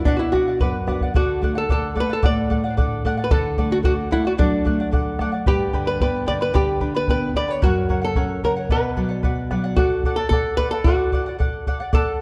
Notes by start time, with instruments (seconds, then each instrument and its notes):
0.05 nylon-string guitar B2, hollow-body jazz guitar D4, charango B4 D5 F#5, bombo low
0.17 hollow-body jazz guitar E4 F#4
0.32 nylon-string guitar B3 D4 F#4, hollow-body jazz guitar F#4, charango B4 D5 F#5, bombo rim, bombo low
0.48 charango D5 F#5
0.60 nylon-string guitar F#2, hollow-body jazz guitar B4, charango B4 D5 F#5, bombo low
0.87 nylon-string guitar B3 D4 F#4, charango B4 D5 F#5, bombo rim, bombo low
1.01 charango D5 F#5, bombo low
1.14 nylon-string guitar D3, hollow-body jazz guitar F#4, charango A4 D5 F#5, bombo low
1.42 nylon-string guitar A3, charango A4 D5 F#5, bombo low
1.55 hollow-body jazz guitar A4, charango D5 F#5
1.69 nylon-string guitar D3, charango A4 D5 F#5, hollow-body jazz guitar A4, bombo low
1.95 nylon-string guitar A3, charango A4 D5 F#5, bombo low
2.00 hollow-body jazz guitar B4
2.09 hollow-body jazz guitar A4, charango D5 F#5
2.23 nylon-string guitar A2, charango A4 D5 F#5, hollow-body jazz guitar D5, bombo low
2.50 nylon-string guitar A3, charango A4 D5 F#5, bombo low
2.64 charango D5 F#5
2.77 nylon-string guitar D3, charango A4 D5 F#5, bombo low
3.04 nylon-string guitar A3, charango A4 D5 F#5, bombo low
3.17 charango D5 F#5
3.24 hollow-body jazz guitar B4
3.31 nylon-string guitar D3, charango A4 D5 F#5, hollow-body jazz guitar A4, bombo low
3.57 nylon-string guitar A3, charango A4 D5 F#5, bombo low
3.71 hollow-body jazz guitar F#4, charango D5 F#5
3.83 nylon-string guitar D3, hollow-body jazz guitar F#4, charango A4 D5 F#5, bombo low
4.11 nylon-string guitar A3, hollow-body jazz guitar E4, charango A4 D5 F#5, bombo low
4.25 hollow-body jazz guitar F#4, charango D5 F#5
4.38 nylon-string guitar F#3, hollow-body jazz guitar D4, charango A4 D5 F#5, bombo low
4.65 nylon-string guitar A3, charango A4 D5 F#5, bombo low
4.80 charango D5 F#5
4.91 nylon-string guitar D3, charango A4 D5 F#5, bombo low
5.19 nylon-string guitar A3, charango A4 D5 F#5, bombo rim, bombo low
5.32 charango D5 F#5
5.46 nylon-string guitar G2, charango G4 B4 D5 G5 B5, hollow-body jazz guitar G4, bombo low
5.73 nylon-string guitar D3, charango B4 D5 G5 B5, bombo low
5.87 hollow-body jazz guitar B4, charango B4 D5 B5
6.00 nylon-string guitar B3, hollow-body jazz guitar B4, charango B4 D5 G5 B5, bombo low
6.26 nylon-string guitar D3, charango B4 D5 G5 B5, hollow-body jazz guitar D5, bombo low
6.41 hollow-body jazz guitar B4, charango B4 D5 B5
6.54 nylon-string guitar D3, charango G4 B4 D5 G5 B5, hollow-body jazz guitar G4, bombo low
6.80 nylon-string guitar D4, charango B4 D5 G5 B5, bombo low
6.95 charango B4 D5 B5, hollow-body jazz guitar B4
7.08 nylon-string guitar B3, charango B4 D5 G5 B5, hollow-body jazz guitar B4, bombo low
7.34 nylon-string guitar D3, charango B4 D5 G5 B5, hollow-body jazz guitar D5, bombo low
7.48 charango B4 D5 B5, hollow-body jazz guitar C#5
7.62 nylon-string guitar F#2, hollow-body jazz guitar F#4, charango A#4 C#5 F#5, bombo low
7.89 nylon-string guitar C#3, charango A#4 C#5 F#5, bombo low
8.02 hollow-body jazz guitar A4, charango C#5 F#5
8.15 nylon-string guitar C#4, charango A#4 C#5 F#5, bombo low
8.43 nylon-string guitar C#3, charango A#4 C#5 F#5, hollow-body jazz guitar A#4, bombo low
8.56 charango C#5 F#5
8.69 nylon-string guitar B2, charango B4 D5 F#5, hollow-body jazz guitar B4, bombo low
8.96 nylon-string guitar F#3, charango B4 D5 F#5, bombo low
9.09 charango D5 F#5
9.23 nylon-string guitar F#4, charango B4 D5 F#5, bombo low
9.51 nylon-string guitar F#3, charango B4 D5 F#5, bombo rim, bombo low
9.64 charango D5 F#5
9.76 hollow-body jazz guitar F#4, charango A4 D5 F#5, bombo low
10.03 charango A4 D5 F#5, bombo low
10.16 hollow-body jazz guitar A4, charango D5 F#5
10.29 hollow-body jazz guitar A4, charango A4 D5, bombo low
10.33 charango F#5
10.57 charango A4 D5 F#5, hollow-body jazz guitar B4, bombo low
10.71 hollow-body jazz guitar A4, charango D5 F#5
10.84 hollow-body jazz guitar F#4, charango A4 D5 F#5, bombo low
11.12 charango A4 D5 F#5, bombo low
11.26 charango D5 F#5
11.39 charango A4 D5 F#5, bombo low
11.66 charango A4 D5 F#5, bombo low
11.80 charango D5 F#5
11.93 charango A4 D5 F#5, hollow-body jazz guitar A4, bombo low